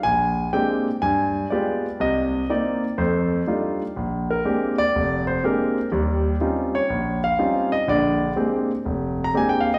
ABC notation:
X:1
M:4/4
L:1/16
Q:"Swing" 1/4=123
K:Bbmix
V:1 name="Grand piano"
a4 g4 a4 d4 | e4 d4 c6 z2 | z2 B4 d4 c2 B4 | z6 _d4 f4 e2 |
d4 z6 z b a g f e |]
V:2 name="Grand piano"
B,,,4 [A,B,CDG]2 z2 G,,4 [A,=B,FG]2 z2 | [C,,C,]4 [B,CE]2 z2 [F,,=A,]4 [G,A,DEF]2 z2 | B,,,4 [A,B,CDG]2 z2 F,,,4 [A,B,CDG]2 z2 | [E,,G,]4 [G,C_DEF]2 z2 B,,,4 [G,CDEF]2 z2 |
[B,,,D,]4 [A,B,CDG]2 z2 F,,,4 [A,B,CDG]2 z2 |]